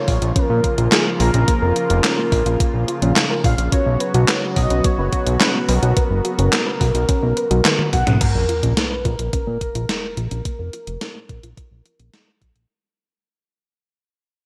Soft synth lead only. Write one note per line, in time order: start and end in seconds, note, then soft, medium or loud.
0.00 0.38 C#5 loud
0.36 0.92 A#4 loud
0.92 1.05 G#4 medium
1.20 2.84 A#4 loud
3.44 3.70 F5 loud
3.72 4.53 C#5 loud
4.57 4.86 D#5 loud
4.85 5.40 C#5 loud
5.41 5.53 B4 medium
5.69 7.89 A#4 loud
7.93 8.19 F#5 loud
8.21 8.79 A#4 loud
8.77 9.07 B4 loud
9.05 12.14 A#4 loud